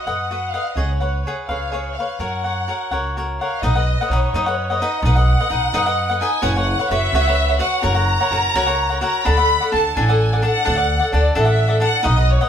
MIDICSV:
0, 0, Header, 1, 4, 480
1, 0, Start_track
1, 0, Key_signature, 6, "major"
1, 0, Tempo, 476190
1, 773, Time_signature, 6, 3, 24, 8
1, 3655, Key_signature, 5, "major"
1, 4132, Tempo, 468019
1, 12737, End_track
2, 0, Start_track
2, 0, Title_t, "Violin section"
2, 0, Program_c, 0, 48
2, 30, Note_on_c, 0, 78, 64
2, 512, Note_on_c, 0, 77, 74
2, 524, Note_off_c, 0, 78, 0
2, 743, Note_on_c, 0, 75, 65
2, 762, Note_off_c, 0, 77, 0
2, 967, Note_on_c, 0, 73, 60
2, 984, Note_off_c, 0, 75, 0
2, 1212, Note_off_c, 0, 73, 0
2, 1238, Note_on_c, 0, 73, 66
2, 1349, Note_off_c, 0, 73, 0
2, 1476, Note_on_c, 0, 77, 62
2, 1711, Note_off_c, 0, 77, 0
2, 1720, Note_on_c, 0, 73, 71
2, 1948, Note_on_c, 0, 77, 63
2, 1967, Note_off_c, 0, 73, 0
2, 2200, Note_off_c, 0, 77, 0
2, 2211, Note_on_c, 0, 78, 66
2, 3178, Note_off_c, 0, 78, 0
2, 3404, Note_on_c, 0, 77, 67
2, 3631, Note_off_c, 0, 77, 0
2, 3642, Note_on_c, 0, 75, 87
2, 4127, Note_off_c, 0, 75, 0
2, 4129, Note_on_c, 0, 73, 74
2, 4848, Note_on_c, 0, 75, 84
2, 4854, Note_off_c, 0, 73, 0
2, 5085, Note_on_c, 0, 78, 93
2, 5091, Note_off_c, 0, 75, 0
2, 6246, Note_off_c, 0, 78, 0
2, 6288, Note_on_c, 0, 80, 88
2, 6509, Note_off_c, 0, 80, 0
2, 6524, Note_on_c, 0, 78, 101
2, 6590, Note_on_c, 0, 80, 71
2, 6599, Note_off_c, 0, 78, 0
2, 6668, Note_off_c, 0, 80, 0
2, 6669, Note_on_c, 0, 78, 97
2, 7003, Note_on_c, 0, 76, 112
2, 7004, Note_off_c, 0, 78, 0
2, 7682, Note_off_c, 0, 76, 0
2, 7731, Note_on_c, 0, 78, 97
2, 7967, Note_off_c, 0, 78, 0
2, 7970, Note_on_c, 0, 82, 104
2, 9174, Note_off_c, 0, 82, 0
2, 9187, Note_on_c, 0, 82, 95
2, 9404, Note_off_c, 0, 82, 0
2, 9416, Note_on_c, 0, 83, 112
2, 9901, Note_off_c, 0, 83, 0
2, 9923, Note_on_c, 0, 81, 90
2, 10135, Note_off_c, 0, 81, 0
2, 10153, Note_on_c, 0, 80, 80
2, 10631, Note_off_c, 0, 80, 0
2, 10641, Note_on_c, 0, 78, 98
2, 11312, Note_off_c, 0, 78, 0
2, 11366, Note_on_c, 0, 74, 81
2, 11591, Note_off_c, 0, 74, 0
2, 11591, Note_on_c, 0, 76, 91
2, 12032, Note_off_c, 0, 76, 0
2, 12073, Note_on_c, 0, 78, 107
2, 12303, Note_off_c, 0, 78, 0
2, 12308, Note_on_c, 0, 75, 93
2, 12529, Note_off_c, 0, 75, 0
2, 12546, Note_on_c, 0, 73, 89
2, 12737, Note_off_c, 0, 73, 0
2, 12737, End_track
3, 0, Start_track
3, 0, Title_t, "Cavaquinho"
3, 0, Program_c, 1, 24
3, 69, Note_on_c, 1, 78, 51
3, 73, Note_on_c, 1, 71, 45
3, 76, Note_on_c, 1, 75, 46
3, 83, Note_on_c, 1, 66, 38
3, 297, Note_off_c, 1, 66, 0
3, 303, Note_off_c, 1, 75, 0
3, 306, Note_off_c, 1, 78, 0
3, 308, Note_off_c, 1, 71, 0
3, 309, Note_on_c, 1, 66, 37
3, 315, Note_on_c, 1, 75, 47
3, 324, Note_on_c, 1, 71, 47
3, 324, Note_on_c, 1, 78, 45
3, 530, Note_off_c, 1, 78, 0
3, 541, Note_off_c, 1, 66, 0
3, 541, Note_off_c, 1, 71, 0
3, 542, Note_on_c, 1, 78, 44
3, 544, Note_off_c, 1, 75, 0
3, 553, Note_on_c, 1, 71, 33
3, 555, Note_on_c, 1, 75, 35
3, 768, Note_off_c, 1, 71, 0
3, 773, Note_on_c, 1, 73, 52
3, 774, Note_on_c, 1, 68, 49
3, 776, Note_off_c, 1, 75, 0
3, 776, Note_off_c, 1, 78, 0
3, 780, Note_on_c, 1, 71, 45
3, 790, Note_on_c, 1, 78, 63
3, 1000, Note_off_c, 1, 78, 0
3, 1009, Note_off_c, 1, 71, 0
3, 1012, Note_on_c, 1, 78, 39
3, 1017, Note_off_c, 1, 73, 0
3, 1018, Note_off_c, 1, 68, 0
3, 1021, Note_on_c, 1, 71, 38
3, 1030, Note_on_c, 1, 73, 32
3, 1253, Note_off_c, 1, 78, 0
3, 1257, Note_off_c, 1, 71, 0
3, 1262, Note_off_c, 1, 73, 0
3, 1279, Note_on_c, 1, 68, 46
3, 1288, Note_on_c, 1, 71, 51
3, 1289, Note_on_c, 1, 73, 49
3, 1289, Note_on_c, 1, 78, 44
3, 1487, Note_off_c, 1, 71, 0
3, 1496, Note_off_c, 1, 78, 0
3, 1499, Note_on_c, 1, 71, 50
3, 1500, Note_on_c, 1, 77, 44
3, 1505, Note_off_c, 1, 68, 0
3, 1506, Note_off_c, 1, 73, 0
3, 1518, Note_on_c, 1, 68, 37
3, 1518, Note_on_c, 1, 73, 42
3, 1719, Note_off_c, 1, 68, 0
3, 1731, Note_on_c, 1, 68, 43
3, 1734, Note_off_c, 1, 73, 0
3, 1741, Note_off_c, 1, 71, 0
3, 1741, Note_off_c, 1, 77, 0
3, 1746, Note_on_c, 1, 73, 49
3, 1752, Note_on_c, 1, 71, 40
3, 1756, Note_on_c, 1, 77, 49
3, 1972, Note_off_c, 1, 68, 0
3, 1980, Note_off_c, 1, 73, 0
3, 1983, Note_off_c, 1, 71, 0
3, 1985, Note_off_c, 1, 77, 0
3, 2002, Note_on_c, 1, 77, 46
3, 2014, Note_on_c, 1, 71, 40
3, 2019, Note_on_c, 1, 73, 39
3, 2212, Note_off_c, 1, 73, 0
3, 2214, Note_on_c, 1, 66, 57
3, 2218, Note_on_c, 1, 70, 49
3, 2220, Note_off_c, 1, 71, 0
3, 2223, Note_off_c, 1, 77, 0
3, 2224, Note_on_c, 1, 73, 52
3, 2227, Note_on_c, 1, 78, 58
3, 2450, Note_off_c, 1, 78, 0
3, 2458, Note_off_c, 1, 66, 0
3, 2460, Note_off_c, 1, 70, 0
3, 2462, Note_on_c, 1, 78, 42
3, 2463, Note_off_c, 1, 73, 0
3, 2475, Note_on_c, 1, 70, 26
3, 2478, Note_on_c, 1, 73, 34
3, 2690, Note_off_c, 1, 70, 0
3, 2698, Note_off_c, 1, 78, 0
3, 2699, Note_on_c, 1, 66, 40
3, 2701, Note_off_c, 1, 73, 0
3, 2702, Note_on_c, 1, 70, 45
3, 2713, Note_on_c, 1, 73, 44
3, 2723, Note_on_c, 1, 78, 45
3, 2924, Note_off_c, 1, 78, 0
3, 2931, Note_off_c, 1, 73, 0
3, 2934, Note_off_c, 1, 70, 0
3, 2936, Note_off_c, 1, 66, 0
3, 2936, Note_on_c, 1, 78, 50
3, 2944, Note_on_c, 1, 73, 53
3, 2946, Note_on_c, 1, 70, 45
3, 2950, Note_on_c, 1, 66, 45
3, 3180, Note_off_c, 1, 78, 0
3, 3183, Note_off_c, 1, 66, 0
3, 3184, Note_off_c, 1, 73, 0
3, 3186, Note_off_c, 1, 70, 0
3, 3195, Note_on_c, 1, 66, 41
3, 3202, Note_on_c, 1, 70, 44
3, 3205, Note_on_c, 1, 73, 55
3, 3216, Note_on_c, 1, 78, 59
3, 3425, Note_off_c, 1, 66, 0
3, 3426, Note_off_c, 1, 78, 0
3, 3429, Note_off_c, 1, 70, 0
3, 3430, Note_off_c, 1, 73, 0
3, 3438, Note_on_c, 1, 78, 42
3, 3441, Note_on_c, 1, 73, 40
3, 3445, Note_on_c, 1, 70, 36
3, 3656, Note_off_c, 1, 70, 0
3, 3657, Note_off_c, 1, 78, 0
3, 3660, Note_on_c, 1, 63, 67
3, 3660, Note_on_c, 1, 71, 59
3, 3663, Note_off_c, 1, 73, 0
3, 3667, Note_on_c, 1, 75, 71
3, 3669, Note_on_c, 1, 78, 75
3, 3769, Note_off_c, 1, 75, 0
3, 3771, Note_off_c, 1, 78, 0
3, 3779, Note_off_c, 1, 63, 0
3, 3779, Note_off_c, 1, 71, 0
3, 3781, Note_on_c, 1, 75, 40
3, 3784, Note_on_c, 1, 78, 52
3, 3793, Note_on_c, 1, 71, 44
3, 4018, Note_off_c, 1, 75, 0
3, 4019, Note_off_c, 1, 78, 0
3, 4024, Note_off_c, 1, 71, 0
3, 4041, Note_on_c, 1, 78, 46
3, 4051, Note_on_c, 1, 71, 38
3, 4051, Note_on_c, 1, 75, 41
3, 4136, Note_off_c, 1, 71, 0
3, 4143, Note_on_c, 1, 63, 50
3, 4147, Note_off_c, 1, 78, 0
3, 4149, Note_on_c, 1, 71, 63
3, 4151, Note_off_c, 1, 75, 0
3, 4162, Note_on_c, 1, 75, 62
3, 4163, Note_on_c, 1, 78, 60
3, 4370, Note_off_c, 1, 71, 0
3, 4377, Note_off_c, 1, 63, 0
3, 4383, Note_off_c, 1, 75, 0
3, 4383, Note_on_c, 1, 71, 64
3, 4385, Note_off_c, 1, 78, 0
3, 4392, Note_on_c, 1, 63, 68
3, 4395, Note_on_c, 1, 75, 72
3, 4397, Note_on_c, 1, 78, 71
3, 4491, Note_off_c, 1, 78, 0
3, 4500, Note_off_c, 1, 71, 0
3, 4504, Note_on_c, 1, 78, 48
3, 4505, Note_off_c, 1, 63, 0
3, 4507, Note_off_c, 1, 75, 0
3, 4520, Note_on_c, 1, 75, 46
3, 4527, Note_on_c, 1, 71, 47
3, 4734, Note_off_c, 1, 78, 0
3, 4747, Note_off_c, 1, 75, 0
3, 4747, Note_on_c, 1, 78, 40
3, 4753, Note_off_c, 1, 71, 0
3, 4759, Note_on_c, 1, 75, 41
3, 4768, Note_on_c, 1, 71, 36
3, 4859, Note_off_c, 1, 71, 0
3, 4861, Note_off_c, 1, 78, 0
3, 4867, Note_off_c, 1, 75, 0
3, 4868, Note_on_c, 1, 63, 63
3, 4871, Note_on_c, 1, 71, 68
3, 4877, Note_on_c, 1, 78, 68
3, 4879, Note_on_c, 1, 75, 71
3, 5098, Note_off_c, 1, 63, 0
3, 5099, Note_off_c, 1, 75, 0
3, 5102, Note_off_c, 1, 71, 0
3, 5105, Note_off_c, 1, 78, 0
3, 5110, Note_on_c, 1, 63, 59
3, 5111, Note_on_c, 1, 75, 62
3, 5119, Note_on_c, 1, 71, 61
3, 5120, Note_on_c, 1, 78, 74
3, 5202, Note_off_c, 1, 78, 0
3, 5210, Note_off_c, 1, 75, 0
3, 5215, Note_on_c, 1, 78, 56
3, 5216, Note_off_c, 1, 71, 0
3, 5222, Note_on_c, 1, 75, 51
3, 5225, Note_off_c, 1, 63, 0
3, 5228, Note_on_c, 1, 71, 40
3, 5457, Note_off_c, 1, 78, 0
3, 5461, Note_off_c, 1, 75, 0
3, 5464, Note_off_c, 1, 71, 0
3, 5471, Note_on_c, 1, 78, 52
3, 5472, Note_on_c, 1, 75, 47
3, 5477, Note_on_c, 1, 71, 37
3, 5564, Note_off_c, 1, 71, 0
3, 5565, Note_off_c, 1, 75, 0
3, 5567, Note_on_c, 1, 63, 65
3, 5570, Note_off_c, 1, 78, 0
3, 5576, Note_on_c, 1, 71, 62
3, 5577, Note_on_c, 1, 75, 59
3, 5583, Note_on_c, 1, 78, 59
3, 5800, Note_off_c, 1, 63, 0
3, 5804, Note_off_c, 1, 75, 0
3, 5807, Note_off_c, 1, 71, 0
3, 5813, Note_on_c, 1, 63, 78
3, 5816, Note_off_c, 1, 78, 0
3, 5816, Note_on_c, 1, 75, 80
3, 5819, Note_on_c, 1, 71, 72
3, 5829, Note_on_c, 1, 78, 83
3, 5928, Note_off_c, 1, 78, 0
3, 5930, Note_off_c, 1, 75, 0
3, 5934, Note_off_c, 1, 63, 0
3, 5937, Note_off_c, 1, 71, 0
3, 5940, Note_on_c, 1, 78, 65
3, 5942, Note_on_c, 1, 75, 64
3, 5955, Note_on_c, 1, 71, 47
3, 6165, Note_off_c, 1, 78, 0
3, 6177, Note_on_c, 1, 78, 51
3, 6178, Note_off_c, 1, 75, 0
3, 6184, Note_off_c, 1, 71, 0
3, 6191, Note_on_c, 1, 75, 37
3, 6195, Note_on_c, 1, 71, 37
3, 6293, Note_off_c, 1, 78, 0
3, 6294, Note_off_c, 1, 71, 0
3, 6296, Note_off_c, 1, 75, 0
3, 6297, Note_on_c, 1, 63, 58
3, 6306, Note_on_c, 1, 71, 62
3, 6308, Note_on_c, 1, 75, 75
3, 6317, Note_on_c, 1, 78, 79
3, 6507, Note_off_c, 1, 63, 0
3, 6507, Note_off_c, 1, 71, 0
3, 6511, Note_off_c, 1, 78, 0
3, 6511, Note_on_c, 1, 66, 67
3, 6512, Note_off_c, 1, 75, 0
3, 6516, Note_on_c, 1, 73, 73
3, 6519, Note_on_c, 1, 71, 81
3, 6523, Note_on_c, 1, 78, 76
3, 6640, Note_off_c, 1, 66, 0
3, 6643, Note_off_c, 1, 73, 0
3, 6645, Note_off_c, 1, 71, 0
3, 6646, Note_off_c, 1, 78, 0
3, 6658, Note_on_c, 1, 78, 60
3, 6666, Note_on_c, 1, 73, 46
3, 6671, Note_on_c, 1, 71, 43
3, 6882, Note_off_c, 1, 78, 0
3, 6886, Note_off_c, 1, 73, 0
3, 6894, Note_off_c, 1, 71, 0
3, 6894, Note_on_c, 1, 78, 56
3, 6898, Note_on_c, 1, 73, 49
3, 6910, Note_on_c, 1, 71, 50
3, 7005, Note_off_c, 1, 73, 0
3, 7007, Note_off_c, 1, 71, 0
3, 7009, Note_off_c, 1, 78, 0
3, 7016, Note_on_c, 1, 66, 67
3, 7017, Note_on_c, 1, 73, 73
3, 7020, Note_on_c, 1, 71, 64
3, 7029, Note_on_c, 1, 78, 64
3, 7244, Note_off_c, 1, 66, 0
3, 7246, Note_off_c, 1, 71, 0
3, 7249, Note_off_c, 1, 73, 0
3, 7254, Note_off_c, 1, 78, 0
3, 7256, Note_on_c, 1, 66, 75
3, 7258, Note_on_c, 1, 71, 78
3, 7260, Note_on_c, 1, 73, 73
3, 7266, Note_on_c, 1, 78, 86
3, 7371, Note_off_c, 1, 78, 0
3, 7372, Note_off_c, 1, 66, 0
3, 7372, Note_off_c, 1, 71, 0
3, 7373, Note_off_c, 1, 73, 0
3, 7383, Note_on_c, 1, 78, 51
3, 7398, Note_on_c, 1, 73, 51
3, 7407, Note_on_c, 1, 71, 52
3, 7592, Note_off_c, 1, 78, 0
3, 7603, Note_off_c, 1, 73, 0
3, 7604, Note_on_c, 1, 78, 42
3, 7610, Note_off_c, 1, 71, 0
3, 7615, Note_on_c, 1, 73, 40
3, 7622, Note_on_c, 1, 71, 37
3, 7711, Note_off_c, 1, 73, 0
3, 7712, Note_off_c, 1, 71, 0
3, 7713, Note_off_c, 1, 78, 0
3, 7715, Note_on_c, 1, 66, 60
3, 7723, Note_on_c, 1, 73, 82
3, 7725, Note_on_c, 1, 71, 70
3, 7726, Note_on_c, 1, 78, 72
3, 7939, Note_off_c, 1, 66, 0
3, 7947, Note_off_c, 1, 73, 0
3, 7951, Note_on_c, 1, 66, 65
3, 7952, Note_off_c, 1, 78, 0
3, 7955, Note_off_c, 1, 71, 0
3, 7959, Note_on_c, 1, 73, 72
3, 7963, Note_on_c, 1, 70, 67
3, 7964, Note_on_c, 1, 78, 77
3, 8066, Note_off_c, 1, 78, 0
3, 8075, Note_off_c, 1, 73, 0
3, 8078, Note_on_c, 1, 78, 61
3, 8080, Note_off_c, 1, 66, 0
3, 8080, Note_off_c, 1, 70, 0
3, 8087, Note_on_c, 1, 73, 52
3, 8092, Note_on_c, 1, 70, 46
3, 8324, Note_off_c, 1, 78, 0
3, 8329, Note_off_c, 1, 73, 0
3, 8331, Note_off_c, 1, 70, 0
3, 8343, Note_on_c, 1, 78, 52
3, 8346, Note_on_c, 1, 73, 48
3, 8347, Note_on_c, 1, 70, 44
3, 8448, Note_off_c, 1, 70, 0
3, 8454, Note_on_c, 1, 66, 56
3, 8455, Note_off_c, 1, 78, 0
3, 8457, Note_off_c, 1, 73, 0
3, 8460, Note_on_c, 1, 70, 65
3, 8467, Note_on_c, 1, 78, 68
3, 8469, Note_on_c, 1, 73, 55
3, 8688, Note_off_c, 1, 70, 0
3, 8689, Note_off_c, 1, 73, 0
3, 8691, Note_off_c, 1, 66, 0
3, 8697, Note_off_c, 1, 78, 0
3, 8700, Note_on_c, 1, 70, 84
3, 8701, Note_on_c, 1, 73, 93
3, 8703, Note_on_c, 1, 66, 78
3, 8710, Note_on_c, 1, 78, 87
3, 8799, Note_off_c, 1, 78, 0
3, 8804, Note_off_c, 1, 73, 0
3, 8811, Note_on_c, 1, 78, 64
3, 8816, Note_on_c, 1, 73, 64
3, 8817, Note_off_c, 1, 70, 0
3, 8818, Note_off_c, 1, 66, 0
3, 8833, Note_on_c, 1, 70, 60
3, 9039, Note_off_c, 1, 78, 0
3, 9051, Note_off_c, 1, 73, 0
3, 9052, Note_on_c, 1, 78, 39
3, 9058, Note_off_c, 1, 70, 0
3, 9063, Note_on_c, 1, 73, 38
3, 9071, Note_on_c, 1, 70, 32
3, 9165, Note_off_c, 1, 70, 0
3, 9166, Note_off_c, 1, 73, 0
3, 9170, Note_on_c, 1, 66, 63
3, 9173, Note_off_c, 1, 78, 0
3, 9177, Note_on_c, 1, 70, 58
3, 9178, Note_on_c, 1, 73, 65
3, 9186, Note_on_c, 1, 78, 70
3, 9409, Note_off_c, 1, 66, 0
3, 9413, Note_off_c, 1, 78, 0
3, 9413, Note_on_c, 1, 62, 65
3, 9415, Note_off_c, 1, 70, 0
3, 9416, Note_off_c, 1, 73, 0
3, 9420, Note_on_c, 1, 69, 70
3, 9422, Note_on_c, 1, 74, 81
3, 9426, Note_on_c, 1, 78, 70
3, 9528, Note_off_c, 1, 78, 0
3, 9529, Note_off_c, 1, 74, 0
3, 9537, Note_off_c, 1, 62, 0
3, 9540, Note_off_c, 1, 69, 0
3, 9541, Note_on_c, 1, 78, 49
3, 9542, Note_on_c, 1, 74, 45
3, 9555, Note_on_c, 1, 69, 41
3, 9765, Note_off_c, 1, 78, 0
3, 9778, Note_on_c, 1, 78, 54
3, 9782, Note_off_c, 1, 74, 0
3, 9785, Note_off_c, 1, 69, 0
3, 9793, Note_on_c, 1, 74, 46
3, 9797, Note_on_c, 1, 69, 43
3, 9886, Note_off_c, 1, 69, 0
3, 9891, Note_off_c, 1, 74, 0
3, 9894, Note_on_c, 1, 62, 54
3, 9898, Note_off_c, 1, 78, 0
3, 9898, Note_on_c, 1, 69, 60
3, 9903, Note_on_c, 1, 74, 54
3, 9911, Note_on_c, 1, 78, 54
3, 10136, Note_off_c, 1, 62, 0
3, 10138, Note_off_c, 1, 69, 0
3, 10140, Note_off_c, 1, 78, 0
3, 10141, Note_off_c, 1, 74, 0
3, 10150, Note_on_c, 1, 62, 73
3, 10150, Note_on_c, 1, 69, 76
3, 10152, Note_on_c, 1, 78, 65
3, 10157, Note_on_c, 1, 74, 64
3, 10260, Note_off_c, 1, 78, 0
3, 10266, Note_off_c, 1, 74, 0
3, 10268, Note_off_c, 1, 62, 0
3, 10268, Note_off_c, 1, 69, 0
3, 10272, Note_on_c, 1, 78, 55
3, 10278, Note_on_c, 1, 74, 58
3, 10288, Note_on_c, 1, 69, 47
3, 10510, Note_off_c, 1, 78, 0
3, 10513, Note_off_c, 1, 74, 0
3, 10517, Note_off_c, 1, 69, 0
3, 10520, Note_on_c, 1, 78, 44
3, 10524, Note_on_c, 1, 74, 43
3, 10531, Note_on_c, 1, 69, 30
3, 10609, Note_off_c, 1, 69, 0
3, 10615, Note_off_c, 1, 74, 0
3, 10615, Note_on_c, 1, 62, 66
3, 10621, Note_on_c, 1, 69, 65
3, 10627, Note_on_c, 1, 74, 68
3, 10629, Note_off_c, 1, 78, 0
3, 10642, Note_on_c, 1, 78, 72
3, 10835, Note_off_c, 1, 69, 0
3, 10837, Note_off_c, 1, 62, 0
3, 10840, Note_off_c, 1, 74, 0
3, 10847, Note_on_c, 1, 69, 64
3, 10850, Note_off_c, 1, 78, 0
3, 10850, Note_on_c, 1, 62, 63
3, 10852, Note_on_c, 1, 74, 68
3, 10862, Note_on_c, 1, 78, 80
3, 10954, Note_off_c, 1, 78, 0
3, 10966, Note_off_c, 1, 74, 0
3, 10967, Note_on_c, 1, 78, 57
3, 10977, Note_off_c, 1, 69, 0
3, 10978, Note_off_c, 1, 62, 0
3, 10978, Note_on_c, 1, 74, 61
3, 10990, Note_on_c, 1, 69, 41
3, 11191, Note_off_c, 1, 78, 0
3, 11202, Note_off_c, 1, 74, 0
3, 11203, Note_on_c, 1, 78, 50
3, 11214, Note_on_c, 1, 74, 50
3, 11217, Note_off_c, 1, 69, 0
3, 11230, Note_on_c, 1, 69, 45
3, 11330, Note_off_c, 1, 69, 0
3, 11333, Note_off_c, 1, 78, 0
3, 11336, Note_off_c, 1, 74, 0
3, 11337, Note_on_c, 1, 62, 53
3, 11343, Note_on_c, 1, 69, 59
3, 11348, Note_on_c, 1, 74, 70
3, 11355, Note_on_c, 1, 78, 69
3, 11559, Note_off_c, 1, 69, 0
3, 11561, Note_off_c, 1, 62, 0
3, 11566, Note_off_c, 1, 74, 0
3, 11571, Note_on_c, 1, 69, 89
3, 11572, Note_off_c, 1, 78, 0
3, 11573, Note_on_c, 1, 62, 64
3, 11578, Note_on_c, 1, 74, 71
3, 11584, Note_on_c, 1, 78, 85
3, 11656, Note_off_c, 1, 78, 0
3, 11668, Note_on_c, 1, 78, 63
3, 11669, Note_off_c, 1, 74, 0
3, 11673, Note_off_c, 1, 69, 0
3, 11682, Note_on_c, 1, 74, 52
3, 11685, Note_on_c, 1, 69, 50
3, 11698, Note_off_c, 1, 62, 0
3, 11891, Note_off_c, 1, 78, 0
3, 11902, Note_off_c, 1, 74, 0
3, 11904, Note_on_c, 1, 78, 43
3, 11909, Note_off_c, 1, 69, 0
3, 11914, Note_on_c, 1, 74, 42
3, 11921, Note_on_c, 1, 69, 33
3, 12030, Note_off_c, 1, 69, 0
3, 12030, Note_on_c, 1, 62, 61
3, 12033, Note_off_c, 1, 74, 0
3, 12036, Note_off_c, 1, 78, 0
3, 12043, Note_on_c, 1, 69, 62
3, 12046, Note_on_c, 1, 74, 73
3, 12048, Note_on_c, 1, 78, 84
3, 12259, Note_off_c, 1, 62, 0
3, 12263, Note_on_c, 1, 63, 75
3, 12265, Note_off_c, 1, 78, 0
3, 12273, Note_off_c, 1, 74, 0
3, 12276, Note_off_c, 1, 69, 0
3, 12277, Note_on_c, 1, 75, 76
3, 12278, Note_on_c, 1, 78, 82
3, 12280, Note_on_c, 1, 71, 76
3, 12398, Note_off_c, 1, 78, 0
3, 12402, Note_off_c, 1, 63, 0
3, 12404, Note_off_c, 1, 75, 0
3, 12410, Note_off_c, 1, 71, 0
3, 12410, Note_on_c, 1, 78, 50
3, 12416, Note_on_c, 1, 75, 53
3, 12423, Note_on_c, 1, 71, 47
3, 12642, Note_off_c, 1, 78, 0
3, 12648, Note_off_c, 1, 75, 0
3, 12654, Note_on_c, 1, 78, 57
3, 12656, Note_off_c, 1, 71, 0
3, 12660, Note_on_c, 1, 75, 54
3, 12668, Note_on_c, 1, 71, 45
3, 12737, Note_off_c, 1, 71, 0
3, 12737, Note_off_c, 1, 75, 0
3, 12737, Note_off_c, 1, 78, 0
3, 12737, End_track
4, 0, Start_track
4, 0, Title_t, "Upright bass"
4, 0, Program_c, 2, 32
4, 61, Note_on_c, 2, 42, 50
4, 527, Note_off_c, 2, 42, 0
4, 762, Note_on_c, 2, 37, 80
4, 1233, Note_off_c, 2, 37, 0
4, 1497, Note_on_c, 2, 37, 56
4, 1964, Note_off_c, 2, 37, 0
4, 2208, Note_on_c, 2, 42, 78
4, 2679, Note_off_c, 2, 42, 0
4, 2930, Note_on_c, 2, 37, 58
4, 3400, Note_off_c, 2, 37, 0
4, 3653, Note_on_c, 2, 35, 93
4, 3965, Note_off_c, 2, 35, 0
4, 4125, Note_on_c, 2, 35, 66
4, 4283, Note_off_c, 2, 35, 0
4, 4370, Note_on_c, 2, 42, 71
4, 4840, Note_off_c, 2, 42, 0
4, 5079, Note_on_c, 2, 35, 114
4, 5398, Note_off_c, 2, 35, 0
4, 5576, Note_on_c, 2, 35, 79
4, 5730, Note_off_c, 2, 35, 0
4, 5800, Note_on_c, 2, 42, 74
4, 6268, Note_off_c, 2, 42, 0
4, 6518, Note_on_c, 2, 30, 106
4, 6833, Note_off_c, 2, 30, 0
4, 7003, Note_on_c, 2, 30, 71
4, 7158, Note_off_c, 2, 30, 0
4, 7235, Note_on_c, 2, 37, 94
4, 7706, Note_off_c, 2, 37, 0
4, 7965, Note_on_c, 2, 30, 100
4, 8280, Note_off_c, 2, 30, 0
4, 8445, Note_on_c, 2, 30, 64
4, 8602, Note_off_c, 2, 30, 0
4, 8693, Note_on_c, 2, 37, 71
4, 9163, Note_off_c, 2, 37, 0
4, 9428, Note_on_c, 2, 38, 91
4, 9739, Note_off_c, 2, 38, 0
4, 9911, Note_on_c, 2, 38, 75
4, 10063, Note_off_c, 2, 38, 0
4, 10143, Note_on_c, 2, 33, 79
4, 10612, Note_off_c, 2, 33, 0
4, 10873, Note_on_c, 2, 38, 108
4, 11183, Note_off_c, 2, 38, 0
4, 11343, Note_on_c, 2, 38, 73
4, 11497, Note_off_c, 2, 38, 0
4, 11571, Note_on_c, 2, 33, 81
4, 12040, Note_off_c, 2, 33, 0
4, 12289, Note_on_c, 2, 35, 113
4, 12603, Note_off_c, 2, 35, 0
4, 12737, End_track
0, 0, End_of_file